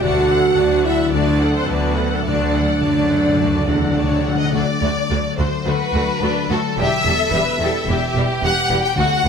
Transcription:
0.02 cello section D2, double bass section D2, harp D3, timpani D3, french horn section F#4, viola section F#4 D5, violin section F#5 A5
0.27 timpani D3, viola section A4 F#5, violin section F#5
0.39 timpani D3, harp F#3
0.47 timpani D3
0.55 double bass section D2, cello section D2, timpani D3, viola section F#4 D5, violin section A5
0.69 timpani D3
0.76 timpani D3, harp A4
0.85 french horn section E4, viola section A4 F#5, violin section E5 F#5
0.92 timpani D3, harp F#4
0.99 timpani D3
1.06 timpani D3
1.12 cello section D2, double bass section D2, harp D3, timpani D3, french horn section D4, viola section F#4 D5, violin section D5 A5
1.22 timpani D3
1.30 timpani D3, harp D4
1.37 timpani D3, viola section A4 F#5, violin section F#5
1.51 timpani D3, harp F#3, violin section C5
1.58 french horn section C4
1.65 double bass section D2, timpani D3, harp F#4, violin section B4 A5
1.69 cello section D2, french horn section B3, viola section F#4 D5
1.73 timpani D3
1.81 timpani D3
1.89 timpani D3, harp A4
1.96 timpani D3, viola section A4 F#5, violin section F#5
2.04 timpani D3
2.13 timpani D3, french horn section A3, violin section A4
2.19 timpani D3
2.26 double bass section D2, cello section D2, harp D3, timpani D3, french horn section D4, viola section F#4 D5, violin section D5 A5
2.35 timpani D3
2.43 timpani D3
2.51 timpani D3
2.55 viola section A4 F#5, violin section F#5
2.59 timpani D3
2.65 timpani D3, harp F#3
2.74 timpani D3
2.81 double bass section D2, cello section F#2, timpani D3, viola section F#4 D5, harp F#4, violin section A5
2.89 timpani D3
2.98 timpani D3
3.03 timpani D3, harp A4
3.11 timpani D3, viola section A4 F#5, violin section F#5
3.21 timpani D3, harp F#4
3.28 timpani D3
3.36 double bass section D2, timpani D3, violin section A5
3.41 harp D3, timpani D3, viola section F#4 D5
3.52 timpani D3
3.60 timpani D3
3.67 cello section E2, timpani D3, viola section A4 F#5, violin section F#5
3.75 timpani D3
3.79 timpani D3, harp F#3
3.89 timpani D3
3.95 double bass section D2, cello section D2, timpani D3, viola section F#4 D5, harp F#4, violin section C#5 A5
4.04 timpani D3
4.11 timpani D3
4.17 timpani D3, harp A4
4.24 viola section A4 F#5, violin section F#5
4.28 timpani D3
4.35 timpani D3, harp F#4, violin section D#5
4.44 timpani D3
4.52 double bass section D2, cello section D2, timpani D3, harp D3, viola section A3 F#4, violin section D5
4.73 harp D4
4.82 double bass section D2, cello section D2, viola section A3 F#4
4.92 harp F#3
5.10 cello section D2, double bass section D2, viola section A3 F#4, harp F#4
5.28 harp A4
5.38 double bass section D2, cello section D2, viola section A3 F#4, violin section C5
5.48 harp F#4
5.66 double bass section D2, cello section D2, harp D3, viola section A3 F#4, violin section F#4 B4
5.85 harp D4
5.93 double bass section D2, cello section D2, viola section A3 F#4
6.02 harp F#3
6.21 double bass section D2, cello section D2, viola section A3 F#4, violin section D4, harp F#4
6.40 harp A4
6.49 double bass section D2, cello section D2, viola section A3 F#4, violin section F#4 A4
6.58 harp F#4
6.77 double bass section E1, cello section E2, harp E3, viola section G3 G4, violin section G4 E5
6.96 harp E4
7.04 double bass section E1, cello section E2, viola section G3 G4, violin section A4
7.15 harp B3
7.32 double bass section E1, cello section E2, viola section G3 G4, harp G4, violin section B4
7.51 harp B3
7.59 double bass section E1, cello section E2, violin section A4
7.64 viola section G3 G4
7.69 harp G4
7.87 double bass section E1, cello section E2, harp E3, viola section G3 G4, violin section G4
8.05 harp E4
8.15 double bass section E1, cello section E2, viola section G3 G4
8.23 harp B3
8.41 double bass section E1, cello section E2, viola section G3 G4, harp G4, violin section F#5
8.60 harp B3
8.70 double bass section E1, cello section E2, viola section G3 G4
8.86 violin section G5
8.96 double bass section D2, cello section D2, timpani D3, harp D3, viola section A3 F#4, violin section F#4 F#5
9.15 harp D4
9.24 double bass section D2, cello section D2, violin section B4

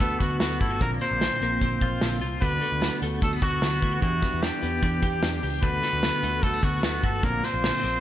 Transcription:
Already playing: clean electric guitar D3 A3
0.00 picked electric bass D2, clean electric guitar D3 A3 B3 F#4, trumpet A4, kick, closed hi-hat
0.19 picked electric bass D2, clean electric guitar A3 B3 F#4, trumpet F#4, kick, closed hi-hat
0.39 picked electric bass D2, clean electric guitar D3 A3 B3 F#4, trumpet F#4, snare, closed hi-hat
0.61 picked electric bass G1, clean electric guitar A3 B3 E4 F#4, trumpet A4, kick, closed hi-hat
0.71 clean electric guitar F#4
0.81 picked electric bass A#1, clean electric guitar A#2 D3 A#3 C4 F4, trumpet A#4, kick, closed hi-hat
1.01 clean electric guitar A#3 C4 F4, trumpet C5, closed hi-hat
1.11 picked electric bass A#1
1.21 clean electric guitar A#2 D3 A#3 C4 F4, snare, closed hi-hat
1.40 picked electric bass A#1, clean electric guitar A#3 C4 F4, closed hi-hat
1.61 picked electric bass A#1, clean electric guitar D3 A#3 C4 F4, kick, closed hi-hat
1.81 picked electric bass A#1, clean electric guitar A#3 C4 F4, kick, closed hi-hat
2.01 picked electric bass A#1, clean electric guitar A#2 D3 A#3 C4 F4, snare, closed hi-hat
2.21 picked electric bass C2, clean electric guitar A#3 C4 F4, closed hi-hat
2.41 picked electric bass D2, clean electric guitar D3 A3 B3 F#4, trumpet B4, kick, closed hi-hat
2.62 clean electric guitar A3 B3, closed hi-hat
2.72 picked electric bass D2
2.82 clean electric guitar D3 A3 B3 F#4, snare, closed hi-hat
3.02 picked electric bass D2, clean electric guitar A3 B3 F#4, closed hi-hat
3.22 picked electric bass D2, clean electric guitar D3 A3 B3 F#4, trumpet A4, kick, closed hi-hat
3.33 clean electric guitar B3
3.42 picked electric bass D2, clean electric guitar A3 B3 F#4, trumpet F#4, kick, closed hi-hat
3.62 picked electric bass D2, clean electric guitar D3 A3 B3 F#4, snare, closed hi-hat
3.82 picked electric bass D2, clean electric guitar A3 B3 E4, kick, closed hi-hat
3.93 clean electric guitar F#4
4.00 picked electric bass E2, clean electric guitar E3 B3 D4 G4, trumpet F#4, kick, closed hi-hat
4.21 clean electric guitar B3 D4 G4, kick, snare, closed hi-hat
4.33 picked electric bass E2
4.41 clean electric guitar E3 B3 D4 G4, trumpet G4, snare, closed hi-hat
4.62 picked electric bass E2, clean electric guitar B3 D4 G4, closed hi-hat
4.82 picked electric bass E2, clean electric guitar E3 B3 D4 G4, kick, closed hi-hat
5.02 picked electric bass E2, clean electric guitar B3 D4 G4, kick, closed hi-hat
5.22 picked electric bass E2, clean electric guitar E3 B3 D4 G4, snare, closed hi-hat
5.42 picked electric bass C#2, clean electric guitar B3 D4 G4, open hi-hat
5.62 picked electric bass D2, clean electric guitar D3 A3 B3 F#4, trumpet B4, kick, closed hi-hat
5.83 clean electric guitar A3 B3, snare, closed hi-hat
5.93 picked electric bass D2
6.03 clean electric guitar D3 A3 B3 F#4, snare, closed hi-hat
6.23 picked electric bass D2, clean electric guitar A3 B3 F#4, closed hi-hat
6.43 picked electric bass D2, clean electric guitar D3 A3 B3 F#4, trumpet A4, kick, closed hi-hat
6.54 clean electric guitar B3
6.63 picked electric bass D2, clean electric guitar A3 B3 F#4, trumpet F#4, kick, closed hi-hat
6.83 picked electric bass D2, clean electric guitar D3 A3 B3 F#4, trumpet F#4, snare, closed hi-hat
7.03 picked electric bass G1, clean electric guitar A3 B3 F#4, trumpet A4, kick, closed hi-hat
7.23 picked electric bass A#1, clean electric guitar A#2 D3 A#3 C4 F4, trumpet A#4, kick, closed hi-hat
7.43 clean electric guitar A#3 C4 F4, trumpet C5, snare, closed hi-hat
7.54 picked electric bass A#1
7.64 clean electric guitar A#2 D3 A#3 C4 F4, snare, closed hi-hat
7.74 clean electric guitar C4
7.83 picked electric bass A#1, clean electric guitar A#3 C4 F4, closed hi-hat

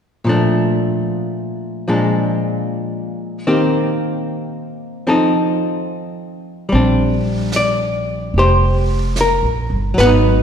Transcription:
0.25 hollow-body jazz guitar A#2 F3
0.29 hollow-body jazz guitar A3 D4
1.88 hollow-body jazz guitar A#2 F3 G#3 D4
3.47 hollow-body jazz guitar D#3 A#3 C4 G4
5.07 hollow-body jazz guitar F3 C4 D#4 A4
6.69 upright bass A#1, hollow-body jazz guitar G3 C4, brush sweep
6.75 hollow-body jazz guitar D4
7.52 snare, hi-hat pedal
7.56 hollow-body jazz guitar D5
8.34 upright bass F1, hollow-body jazz guitar G4, brush sweep
8.39 hollow-body jazz guitar C5
9.16 snare, hi-hat pedal
9.21 hollow-body jazz guitar A#4
9.43 upright bass A#1
9.70 upright bass G1
9.94 upright bass G#1, hollow-body jazz guitar F#3, brush sweep, snare
9.98 hollow-body jazz guitar B3 B4 F#5
10.06 hollow-body jazz guitar D#4

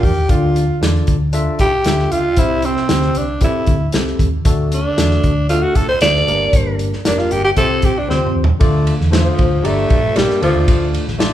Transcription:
Already playing: tine electric piano D4 G4 A#4 D5
0.03 fingered electric bass E2, tenor saxophone G4, kick, open hi-hat
0.16 fingered electric bass D#2
0.29 fingered electric bass D2, tine electric piano D3 D4 F4 A4 D5, tenor saxophone F4, kick, closed hi-hat
0.56 closed hi-hat
0.81 fingered electric bass E2, tine electric piano D4 F4 A4 D5, snare, closed hi-hat
0.95 snare
1.07 fingered electric bass D2, kick, closed hi-hat
1.33 tine electric piano D4 F4 A4 E5, closed hi-hat
1.59 fingered electric bass C2, tenor saxophone G4, kick, closed hi-hat
1.84 fingered electric bass D2, tine electric piano D4 F4 A4 E5, snare, closed hi-hat
1.99 snare
2.11 fingered electric bass C#2, tenor saxophone F4, closed hi-hat
2.36 fingered electric bass C2, tine electric piano C3 C4 E4 G4 C5, tenor saxophone E4, kick, closed hi-hat
2.62 tenor saxophone C4, closed hi-hat
2.77 snare
2.88 fingered electric bass D2, tine electric piano C4 E4 G4 C5, snare, closed hi-hat
3.02 snare
3.15 fingered electric bass C2, tenor saxophone D4, closed hi-hat
3.41 tine electric piano C4 E4 G4 A4, tenor saxophone E4, kick, closed hi-hat
3.67 fingered electric bass D2, kick, closed hi-hat
3.92 fingered electric bass C2, tine electric piano C4 E4 G4 A4, snare, closed hi-hat
4.07 snare
4.19 fingered electric bass D#2, kick, closed hi-hat
4.45 fingered electric bass D2, tine electric piano D3 A3 D4 F#4 A4, kick, closed hi-hat
4.72 tenor saxophone D4, closed hi-hat
4.97 fingered electric bass E2, tine electric piano A3 D4 F#4 A4, snare, closed hi-hat
5.11 snare
5.24 fingered electric bass D2, kick, closed hi-hat
5.49 tine electric piano A3 D4 F#4 A4, tenor saxophone F4, closed hi-hat
5.63 tenor saxophone F#4
5.75 fingered electric bass C2, tenor saxophone A4, kick, closed hi-hat
5.89 tenor saxophone C5
6.01 fingered electric bass D2, tine electric piano A3 D4 F#4 A4, tenor saxophone D5, snare, closed hi-hat
6.16 snare
6.27 fingered electric bass G1, tine electric piano G2 A#3 D4 G4 A#4, closed hi-hat
6.53 fingered electric bass G1, kick, closed hi-hat
6.79 closed hi-hat
6.93 snare
7.05 fingered electric bass F1, tine electric piano A#3 D4 G4 A#4, tenor saxophone D4, snare, closed hi-hat
7.18 tenor saxophone F4, snare
7.31 fingered electric bass G1, tenor saxophone G4, closed hi-hat
7.44 tenor saxophone G4
7.56 fingered electric bass C2, tine electric piano C3 C4 F4 G4 C5, tenor saxophone A4, kick, closed hi-hat
7.82 fingered electric bass C2, tenor saxophone G4, kick, closed hi-hat
7.98 tenor saxophone D4
8.08 fingered electric bass D2, tine electric piano C4 F4 G4 C5, tenor saxophone C4, snare
8.27 mid tom
8.35 fingered electric bass D#2
8.44 floor tom
8.60 fingered electric bass D2, tine electric piano D3 A3 D4 F4 A4 D5, kick, ride
8.87 ride
9.00 fingered electric bass E2, snare
9.10 tenor saxophone F3, tine electric piano A3 D4 F4 A4 C5, snare, ride
9.39 fingered electric bass D2, kick, ride
9.63 fingered electric bass G1, tine electric piano G2 G3 D4 G4 D5 A#5, tenor saxophone A3, ride
9.90 fingered electric bass A#1, kick, ride
10.15 fingered electric bass A#1, tenor saxophone G3, tine electric piano A#3 D4 G4 A#4 D5, snare, ride
10.30 snare
10.41 fingered electric bass D2, tine electric piano D3 A3 D4 F4 A4 D5, tenor saxophone F3, ride
10.55 fingered electric bass D#2
10.68 fingered electric bass D2, kick, ride
10.94 ride
11.07 fingered electric bass A1, snare
11.18 tine electric piano A3 D4 F4 A4 D5, snare, ride

